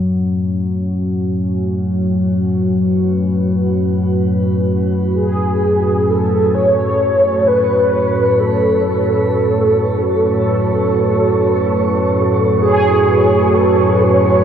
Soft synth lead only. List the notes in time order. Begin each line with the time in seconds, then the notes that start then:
5.14 G#4
6.09 A4
6.54 C#5
7.47 B4
8.40 A4
10.28 A4
12.61 G#4
13.54 A4
14.03 C#5